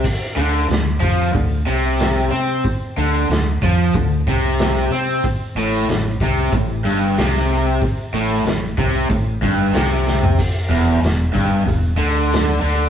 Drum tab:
CC |x---------------|----------------|----------------|----------------|
HH |--o-o-o-o-o-o-o-|o-o-o-o-o-o-o-o-|o-o-o-o-o-o-o-o-|o-o-o-o-o-o-o---|
SD |----o-------o---|----o-------o---|----o-------oo--|----o-------ooo-|
FT |----------------|----------------|----------------|---------------o|
BD |o-----o-o-------|o-----o-o-o-----|o-----o-o-------|o-----o-o-o-----|

CC |x---------------|
HH |o-o-o-o-o-o-o-o-|
SD |----o-------o---|
FT |----------------|
BD |o-----o-o-------|